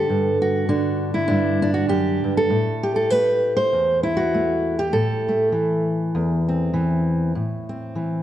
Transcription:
0.00 0.68 D3 medium
0.00 0.41 A4 loud
0.09 1.29 G2 medium
0.42 1.14 F#4 medium
0.69 2.51 D3 medium
0.69 1.26 D4 medium
1.14 1.73 E4 medium
1.28 1.88 G2 medium
1.28 1.61 D4 medium
1.62 2.37 D4 medium
1.74 1.89 F#4 medium
1.88 2.23 F#2 medium
1.88 2.37 G4 loud
2.24 2.51 G2 medium
2.37 2.95 A4 loud
2.50 3.71 A2 medium
2.83 3.58 G4 medium
2.96 3.10 A4 medium
3.10 4.34 A3 medium
3.10 3.56 B4 loud
3.57 4.03 C5 loud
3.73 4.94 E2 medium
4.03 4.78 E4 medium
4.17 4.78 F#4 medium
4.34 5.29 A3 medium
4.79 5.53 G4 loud
4.93 6.14 A2 medium
4.93 7.35 A4 medium
5.29 7.33 A3 soft
5.52 6.72 E3 medium
6.15 7.36 E2 medium
6.49 7.33 C4 soft
6.74 7.32 E3 medium
7.35 8.23 A2 medium
7.69 8.23 C4 soft
7.95 8.23 E3 medium

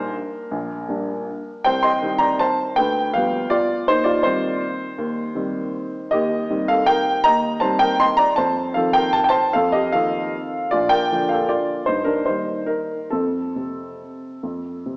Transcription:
0.00 0.16 A#1 medium
0.00 0.48 G3 soft
0.00 0.48 A#3 soft
0.00 0.88 D4 medium
0.00 0.16 D#4 medium
0.00 1.65 A#4 loud
0.00 0.15 C5 loud
0.51 0.87 A#1 medium
0.88 1.62 G3 soft
0.88 1.62 A#3 soft
0.88 1.63 D4 medium
1.65 2.02 C2 medium
1.65 1.83 C5 medium
1.65 1.83 G5 loud
1.83 2.19 D#5 medium
1.83 2.21 C6 loud
2.02 2.74 D#3 medium
2.02 2.74 G3 soft
2.02 2.74 C4 medium
2.18 2.38 D5 medium
2.18 2.39 A#5 loud
2.39 2.75 C5 medium
2.39 2.77 A5 loud
2.76 3.14 D2 medium
2.76 3.12 B4 medium
2.76 3.14 G5 loud
3.14 3.85 F3 soft
3.14 3.85 G3 medium
3.14 3.85 B3 medium
3.14 3.49 B4 medium
3.14 3.52 F5 loud
3.50 3.85 F4 medium
3.50 3.87 D5 loud
3.88 4.25 D#2 medium
3.88 4.05 D#4 medium
3.88 4.06 C5 loud
4.04 4.23 F4 medium
4.04 4.24 D5 loud
4.23 4.95 D#3 medium
4.23 4.95 G3 medium
4.23 4.96 C4 medium
4.23 6.08 D#4 medium
4.23 6.11 C5 loud
4.98 5.34 D#2 medium
5.35 6.08 D#3 medium
5.35 6.09 G3 medium
5.35 6.08 C4 medium
6.11 6.49 D#2 medium
6.11 6.65 G4 medium
6.11 6.68 D#5 loud
6.50 7.22 D#3 medium
6.50 7.22 G3 medium
6.50 7.23 C4 medium
6.68 6.87 A4 medium
6.68 6.88 F5 loud
6.86 7.23 A#4 medium
6.86 7.25 G5 loud
7.24 7.62 D#2 medium
7.24 7.60 D#5 medium
7.24 7.62 A#5 loud
7.60 8.34 D#3 medium
7.60 8.34 G3 medium
7.60 8.34 C4 medium
7.60 7.80 C5 medium
7.60 7.80 A5 loud
7.79 7.99 A#4 medium
7.79 8.00 G5 loud
8.00 8.18 D#5 medium
8.00 8.19 C6 loud
8.17 8.36 D5 medium
8.17 8.37 A#5 loud
8.36 8.75 F2 medium
8.36 8.73 C5 medium
8.36 8.75 A5 loud
8.74 9.50 D#3 soft
8.74 9.50 F3 medium
8.74 9.50 C4 medium
8.74 8.94 A4 medium
8.74 8.95 F5 medium
8.93 9.14 A#4 medium
8.93 9.14 G5 loud
9.13 9.21 A5 loud
9.24 9.30 G5 medium
9.29 9.52 C5 medium
9.29 9.53 A5 loud
9.53 9.92 F2 medium
9.53 9.72 A4 medium
9.53 9.72 F5 loud
9.72 9.91 G4 medium
9.72 9.92 D#5 loud
9.92 10.69 D#3 soft
9.92 10.69 F3 soft
9.92 10.69 C4 medium
9.92 10.68 A4 medium
9.92 10.72 F5 loud
10.71 11.10 A#1 medium
10.71 10.90 F4 medium
10.71 10.90 D5 loud
10.89 11.27 A#4 medium
10.89 11.29 G5 loud
11.12 11.84 D3 soft
11.12 11.84 F3 soft
11.12 11.84 A#3 medium
11.29 11.48 A4 medium
11.29 11.49 F5 medium
11.49 11.85 F4 medium
11.49 11.87 D5 medium
11.86 12.25 G2 medium
11.86 12.05 D#4 medium
11.86 12.06 C5 medium
12.04 12.24 D4 medium
12.04 12.25 A#4 medium
12.26 13.08 D#3 soft
12.26 13.08 G3 soft
12.26 13.08 A#3 soft
12.26 12.66 D#4 medium
12.26 12.68 C5 medium
12.66 13.08 D#4 medium
12.66 13.10 A#4 medium
13.10 13.54 F2 medium
13.10 13.56 C4 medium
13.10 14.97 A4 medium
13.56 14.38 C3 soft
13.56 14.39 C4 soft
14.43 14.83 F2 medium
14.86 14.97 C3 soft
14.86 14.97 C4 soft

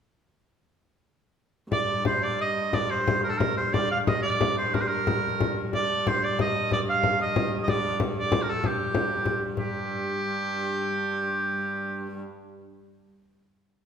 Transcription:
1.71 5.74 G2 medium
1.71 2.03 D5 medium
1.71 frame drum medium
2.05 2.25 C5 medium
2.05 frame drum medium
2.23 2.40 D5 medium
2.23 frame drum soft
2.41 2.75 D#5 medium
2.57 frame drum soft
2.73 2.92 D5 medium
2.73 frame drum medium
2.90 3.23 C5 medium
3.08 frame drum medium
3.23 3.31 A#4 medium
3.23 frame drum soft
3.30 3.39 A4 medium
3.37 3.56 A#4 medium
3.37 frame drum medium
3.57 3.75 C5 medium
3.57 frame drum soft
3.73 3.91 D5 medium
3.73 frame drum medium
3.91 3.99 F5 medium
4.07 4.22 D#5 medium
4.07 frame drum medium
4.22 4.54 D5 medium
4.22 frame drum soft
4.41 frame drum medium
4.57 4.76 C5 medium
4.57 frame drum soft
4.74 4.83 A#4 medium
4.74 frame drum medium
4.81 4.89 C5 medium
4.87 5.57 A#4 medium
4.87 frame drum soft
5.07 frame drum medium
5.41 frame drum medium
5.57 frame drum soft
5.73 9.57 G2 medium
5.73 6.09 D5 medium
5.73 frame drum medium
6.07 6.25 C5 medium
6.07 frame drum medium
6.23 6.40 D5 medium
6.23 frame drum soft
6.39 6.70 D#5 medium
6.39 frame drum medium
6.55 frame drum soft
6.71 6.80 D5 medium
6.71 frame drum medium
6.89 7.19 F5 medium
7.03 frame drum medium
7.20 7.54 D#5 medium
7.20 frame drum soft
7.36 frame drum medium
7.52 frame drum soft
7.63 7.71 D#5 medium
7.68 8.01 D5 medium
7.68 frame drum medium
8.00 frame drum medium
8.16 8.43 D5 medium
8.16 frame drum soft
8.32 frame drum medium
8.42 8.51 A#4 medium
8.48 8.67 A4 medium
8.48 frame drum soft
8.64 9.43 G4 medium
8.64 frame drum medium
8.95 frame drum medium
9.26 frame drum medium
9.42 frame drum soft
9.57 12.19 G2 medium
9.57 12.16 G4 medium
9.57 frame drum medium

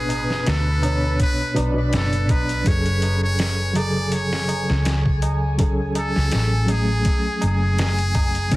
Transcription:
0.00 0.31 A1 medium
0.00 0.82 B2 medium
0.00 0.83 B3 medium
0.00 0.84 D4 medium
0.00 0.50 G#4 loud
0.00 2.68 B4 medium
0.09 closed hi-hat medium
0.09 tabla na medium
0.29 0.45 F#1 medium
0.29 snare soft
0.29 tabla na soft
0.46 1.17 D2 loud
0.46 1.21 A4 loud
0.46 snare loud
0.46 closed hi-hat medium
0.46 tabla na medium
0.67 tabla na soft
0.82 1.53 B2 medium
0.82 1.53 B3 medium
0.82 1.54 D4 medium
0.82 1.54 C#5 medium
0.82 closed hi-hat medium
0.82 tabla na loud
1.04 tabla na soft
1.20 1.65 B4 loud
1.20 kick loud
1.20 closed hi-hat medium
1.20 tabla na medium
1.40 tabla na soft
1.54 1.94 B1 loud
1.54 1.72 B2 loud
1.54 1.73 B3 medium
1.54 1.73 D4 medium
1.54 1.74 D5 loud
1.54 closed hi-hat medium
1.54 tabla na medium
1.74 2.61 B2 medium
1.74 2.62 B3 medium
1.74 2.63 D4 medium
1.74 tabla na soft
1.79 2.64 D5 medium
1.93 2.30 F#1 medium
1.93 2.33 A4 loud
1.93 snare loud
1.93 closed hi-hat loud
1.93 tabla na medium
2.13 closed hi-hat soft
2.29 2.62 B1 loud
2.29 2.69 B4 loud
2.29 kick loud
2.29 closed hi-hat medium
2.29 tabla na loud
2.49 closed hi-hat soft
2.49 tabla na soft
2.63 4.66 F#1 medium
2.63 3.71 F#3 medium
2.63 3.72 C#4 medium
2.63 3.73 G#4 medium
2.63 8.56 G#5 medium
2.63 kick loud
2.63 closed hi-hat medium
2.63 tabla na medium
2.68 3.74 A4 medium
2.68 3.23 C#5 loud
2.86 closed hi-hat soft
2.86 tabla na soft
3.02 closed hi-hat medium
3.02 tabla na medium
3.23 3.79 C#5 loud
3.23 tabla na soft
3.39 snare loud
3.39 closed hi-hat medium
3.39 tabla na soft
3.59 tabla na soft
3.73 5.54 C#3 medium
3.73 5.54 F#3 medium
3.73 5.56 G#4 medium
3.73 closed hi-hat medium
3.73 tabla na medium
3.77 5.57 A4 medium
3.77 4.15 D5 loud
3.96 tabla na soft
4.12 5.23 C#5 loud
4.12 closed hi-hat medium
4.12 tabla na soft
4.33 snare medium
4.48 closed hi-hat medium
4.48 tabla na medium
4.69 6.12 C#2 medium
4.69 snare soft
4.69 tabla na soft
4.84 snare loud
4.84 closed hi-hat medium
4.84 tabla na medium
5.05 kick medium
5.05 tabla na soft
5.22 closed hi-hat medium
5.22 tabla na loud
5.43 tabla na soft
5.57 5.75 F#3 medium
5.57 5.75 C#4 medium
5.57 5.76 G#4 medium
5.57 5.77 A4 medium
5.57 kick loud
5.57 closed hi-hat medium
5.57 tabla na medium
5.80 tabla na soft
5.95 6.73 A4 loud
5.95 closed hi-hat medium
5.95 tabla na medium
6.15 6.31 C#2 medium
6.15 snare soft
6.15 tabla na soft
6.32 7.03 A1 loud
6.32 snare loud
6.32 closed hi-hat medium
6.32 tabla na medium
6.53 tabla na soft
6.65 8.46 F#3 medium
6.65 8.47 C#4 medium
6.65 closed hi-hat medium
6.65 tabla na medium
6.70 8.49 A3 medium
6.70 8.48 G#4 medium
6.70 7.43 G#4 loud
6.88 tabla na soft
7.05 kick loud
7.05 closed hi-hat medium
7.05 tabla na medium
7.26 tabla na soft
7.41 8.49 F#1 loud
7.41 closed hi-hat medium
7.41 tabla na medium
7.46 8.56 G#4 loud
7.62 tabla na soft
7.79 snare loud
7.79 closed hi-hat medium
7.79 tabla na medium
7.99 closed hi-hat soft
7.99 tabla na soft
8.15 kick loud
8.15 closed hi-hat medium
8.15 tabla na medium
8.35 closed hi-hat soft
8.35 tabla na soft
8.49 8.56 B1 loud
8.49 8.56 B2 medium
8.49 8.56 B3 medium
8.49 8.56 D4 medium
8.49 kick loud
8.49 closed hi-hat medium
8.49 tabla na medium

